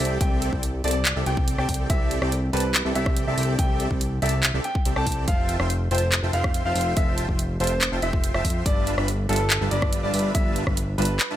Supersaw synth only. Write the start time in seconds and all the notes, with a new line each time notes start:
0.00 C4 G4 A4 D5 G5
0.21 C4 G4 A4 D5 E5
0.53 C4 G4 A4 D5 G5
0.84 C4 G4 A4 D5 A5
1.16 C4 G4 A4 D5 E5
1.26 C4 G4 A4 D5 G5
1.58 C4 G4 A4 D5 A5
1.69 C4 G4 A4 D5 G5
1.90 C4 G4 A4 D5 E5
2.22 C4 G4 A4 D5 G5
2.53 C4 G4 A4 D5 A5
2.85 C4 G4 A4 D5 E5
2.95 C4 G4 A4 D5 G5
3.27 C4 G4 A4 D5 A5
3.38 C4 G4 A4 D5 G5
3.59 C4 G4 A4 D5 E5
3.91 C4 G4 A4 D5 G5
4.22 C4 G4 A4 D5 A5
4.54 C4 G4 A4 D5 E5
4.85 C4 G4 A4 D5 E5
4.96 C4 G4 A4 D5 G5
5.28 F4 C5 E5 G5 A5
5.60 F4 C5 E5 G5 C6
5.91 F4 C5 E5 G5 A5
6.23 F4 C5 E5 G5 A5
6.33 F4 C5 E5 G5 C6
6.65 F4 C5 E5 G5 A5
6.76 F4 C5 E5 G5 C6
6.97 F4 C5 E5 G5 A5
7.29 F4 C5 E5 G5 C6
7.60 F4 C5 E5 G5 A5
7.92 F4 C5 E5 G5 A5
8.02 F4 C5 E5 G5 C6
8.35 F4 C5 E5 G5 A5
8.45 F4 C5 E5 G5 C6
8.66 G3 D4 F4 B4 E5 A5
8.98 G3 D4 F4 B4 E5 B5
9.29 G3 D4 F4 B4 E5 A5
9.61 G3 D4 F4 B4 E5 A5
9.72 G3 D4 F4 B4 E5 B5
10.04 G3 D4 F4 B4 E5 A5
10.14 G3 D4 F4 B4 E5 B5
10.35 G3 D4 F4 B4 E5 A5
10.67 G3 D4 F4 B4 E5 B5
10.98 G3 D4 F4 B4 E5 A5
11.30 G3 D4 F4 B4 E5 A5